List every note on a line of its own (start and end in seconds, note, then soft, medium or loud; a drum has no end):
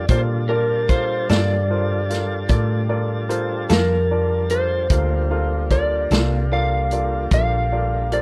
0.08 1.26 A#2 medium
0.08 4.88 G3 medium
0.08 4.87 D4 medium
0.08 0.40 F4 medium
0.08 4.88 F4 medium
0.08 0.40 A4 soft
0.08 0.40 A#4 soft
0.08 0.21 C5 medium
0.08 0.40 D5 medium
0.08 4.88 A5 medium
0.08 kick medium
0.08 closed hi-hat medium
0.49 0.80 F4 medium
0.49 0.91 A#4 medium
0.49 0.80 A#4 medium
0.49 0.80 D5 medium
0.49 0.79 A5 soft
0.89 1.20 F4 soft
0.89 1.20 A4 soft
0.89 1.20 A#4 soft
0.89 1.30 C5 medium
0.89 1.20 F5 medium
0.89 kick medium
0.89 closed hi-hat medium
1.29 2.47 G2 medium
1.29 1.55 G3 medium
1.29 1.55 A#3 soft
1.29 1.60 F4 soft
1.29 1.54 F4 medium
1.29 1.54 A4 medium
1.29 1.60 A4 soft
1.29 1.60 A#4 soft
1.29 1.60 D5 soft
1.29 2.87 D5 medium
1.29 snare loud
1.29 closed hi-hat medium
1.70 2.00 F4 medium
1.70 2.00 A4 soft
1.70 2.00 A#4 soft
1.70 2.01 C5 medium
2.10 2.40 F4 soft
2.10 2.40 A4 soft
2.10 2.40 A#4 soft
2.10 2.40 F5 medium
2.10 snare soft
2.10 closed hi-hat medium
2.49 3.67 A2 medium
2.49 2.80 F4 soft
2.49 2.80 A4 medium
2.49 2.80 A#4 soft
2.49 2.80 D5 medium
2.49 kick medium
2.49 closed hi-hat medium
2.89 3.20 F4 medium
2.89 3.20 A4 medium
2.89 3.20 A#4 medium
2.89 3.20 D5 medium
3.29 3.60 F4 medium
3.29 3.60 A4 medium
3.29 3.60 A#4 medium
3.29 3.60 C5 medium
3.29 closed hi-hat medium
3.69 4.87 F2 medium
3.69 3.95 G3 soft
3.69 3.95 A#3 soft
3.69 3.95 F4 medium
3.69 4.01 F4 soft
3.69 3.94 A4 medium
3.69 4.01 A#4 soft
3.69 4.50 A#4 medium
3.69 4.01 F5 medium
3.69 4.01 A5 soft
3.69 snare loud
3.69 closed hi-hat medium
4.11 4.41 F4 soft
4.11 4.41 A#4 soft
4.11 4.41 D5 medium
4.11 4.41 A5 soft
4.50 4.81 F4 soft
4.50 4.81 A4 soft
4.50 4.81 A#4 soft
4.50 5.71 C5 medium
4.50 4.81 C5 soft
4.50 closed hi-hat medium
4.90 6.07 D2 medium
4.90 8.22 G3 medium
4.90 8.22 A#3 medium
4.90 8.22 D4 medium
4.90 5.21 F4 medium
4.90 8.22 F4 medium
4.90 5.21 A4 soft
4.90 5.21 A#4 soft
4.90 5.21 F5 medium
4.90 kick medium
4.90 closed hi-hat medium
5.31 5.61 F4 medium
5.31 5.61 A4 medium
5.31 5.61 A#4 soft
5.31 5.61 F5 medium
5.70 6.01 F4 soft
5.70 6.01 A4 soft
5.70 6.01 A#4 soft
5.70 6.01 D5 medium
5.70 6.54 D5 medium
5.70 kick medium
5.70 closed hi-hat soft
6.11 7.28 C2 medium
6.11 6.36 G3 soft
6.11 6.36 A#3 medium
6.11 6.42 F4 soft
6.11 6.36 F4 medium
6.11 6.36 A4 medium
6.11 6.42 A4 soft
6.11 6.42 A#4 soft
6.11 6.42 F5 soft
6.11 snare medium
6.11 closed hi-hat medium
6.52 6.82 F4 medium
6.52 6.82 A4 soft
6.52 6.82 A#4 soft
6.52 6.82 D5 medium
6.52 7.29 F5 medium
6.91 7.22 F4 soft
6.91 7.22 A4 soft
6.91 7.22 A#4 soft
6.91 7.22 D5 medium
6.91 closed hi-hat medium
7.31 8.22 A#1 medium
7.31 7.63 F4 soft
7.31 7.63 A4 soft
7.31 7.63 A#4 soft
7.31 7.63 D5 medium
7.31 8.16 F5 loud
7.31 kick medium
7.31 closed hi-hat medium
7.72 8.03 F4 soft
7.72 8.02 A4 soft
7.72 8.02 A#4 soft
7.72 8.02 D5 soft
8.11 8.22 F4 soft
8.11 8.22 A4 soft
8.11 8.22 A#4 medium
8.11 8.22 C5 medium
8.11 8.22 D5 medium
8.11 closed hi-hat soft